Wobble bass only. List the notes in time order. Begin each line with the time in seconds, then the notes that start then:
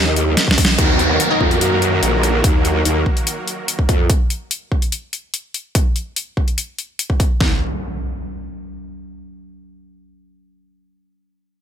Already playing: D#2
0.78 D#2
1.41 F2
1.61 F#2
2.03 A#1
2.44 D#2
2.85 D#2
3.89 F2